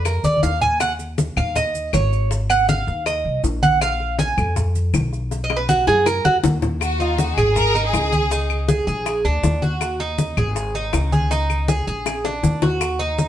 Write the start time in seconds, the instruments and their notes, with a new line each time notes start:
Already playing: upright bass F2
0.05 cuban tres A#4, high bongo, high conga, claves, maracas
0.23 upright bass F2, cuban tres D5, high conga, maracas
0.37 high conga
0.43 upright bass D#2, cuban tres F5, high bongo, low bongo, maracas
0.61 cuban tres G#5, high bongo, low conga, maracas
0.80 cuban tres F#5, high bongo, high conga, claves, maracas
0.99 high bongo, high conga, maracas
1.18 high bongo, high conga, maracas
1.36 upright bass D#2, cuban tres F5, high bongo, high conga, low conga, claves, maracas
1.56 cuban tres D#5, high bongo, high conga, low conga, maracas
1.75 high conga, maracas
1.93 upright bass G#1, cuban tres C#5, high bongo, low bongo, high conga, claves, maracas
2.12 high bongo, high conga, maracas
2.31 high bongo, high conga, maracas
2.50 cuban tres F#5, high bongo, high conga, claves, maracas
2.69 cuban tres F5, high bongo, high conga, maracas
2.87 upright bass D#2, high bongo, high conga, maracas
3.06 cuban tres D#5, high bongo, high conga, claves, maracas
3.25 upright bass C2, high conga
3.44 upright bass A#1, high bongo, low bongo, high conga, maracas
3.63 cuban tres F#5, high bongo, high conga, maracas
3.81 cuban tres F5, high bongo, high conga, claves, maracas
4.00 high bongo, high conga
4.19 cuban tres G#5, high bongo, high conga, maracas
4.37 upright bass F2, high bongo, high conga, low conga, claves, maracas
4.56 high bongo, high conga, low conga, maracas
4.75 high conga, maracas
4.94 upright bass B1, high bongo, low bongo, high conga, claves, maracas
5.12 high bongo, high conga, maracas
5.31 high bongo, high conga, maracas
5.44 cuban tres D#5
5.50 high bongo, high conga, claves
5.56 cuban tres B4
5.69 cuban tres F#4, high conga, maracas
5.87 upright bass F#2, cuban tres G#4, low bongo, high conga, maracas
6.06 cuban tres A#4, low bongo, high conga, claves, maracas
6.25 upright bass F2, cuban tres F#4, high conga
6.43 upright bass D#2, low bongo, high conga, maracas
6.62 low bongo, low conga, maracas
6.81 violin section F#4, high bongo, high conga, claves, maracas
7.00 cuban tres D#4, violin section F4, high bongo, high conga, maracas
7.18 violin section F#4, high bongo, high conga, maracas
7.37 upright bass G#1, violin section G#4, cuban tres G#4, high conga, low conga, claves, maracas
7.56 violin section A#4, high bongo, high conga, low conga, maracas
7.75 cuban tres D#4, high bongo, high conga, maracas
7.84 violin section G#4
7.93 upright bass C#2, high bongo, low bongo, high conga, claves, maracas
8.12 cuban tres G#4, high bongo, high conga, maracas
8.31 cuban tres D#4, high bongo, maracas
8.50 high bongo, high conga, claves, maracas
8.68 cuban tres G#4, high bongo, high conga, maracas
8.87 upright bass A#1, cuban tres G#4, high bongo, high conga, maracas
9.06 high bongo, high conga, claves, maracas
9.24 upright bass D2, cuban tres D4, high conga, maracas
9.43 upright bass D#2, high bongo, low bongo, high conga, maracas
9.62 cuban tres F#4, high bongo, high conga, maracas
9.81 high bongo, high conga, claves, maracas
10.00 cuban tres D#4, high bongo, high conga, maracas
10.18 high bongo, high conga, maracas
10.37 upright bass G#1, cuban tres G#4, high conga, low conga, claves, maracas
10.56 high bongo, high conga, maracas
10.75 cuban tres D#4, high bongo, high conga, maracas
10.93 upright bass C#2, high bongo, low bongo, high conga, claves, maracas
11.12 cuban tres G#4, high bongo, high conga, maracas
11.31 cuban tres D#4, high bongo, high conga, maracas
11.50 high bongo, high conga, claves, maracas
11.68 cuban tres G#4, high bongo, high conga, maracas
11.87 upright bass A#1, cuban tres G#4, high bongo, high conga, maracas
12.06 high bongo, high conga, claves, maracas
12.25 cuban tres D4, high bongo, high conga, maracas
12.43 upright bass D#2, low bongo, high conga, maracas
12.62 cuban tres F#4, low bongo, high conga, maracas
12.81 high bongo, high conga, claves, maracas
12.99 cuban tres D#4, high bongo, high conga, maracas
13.18 high bongo, high conga, maracas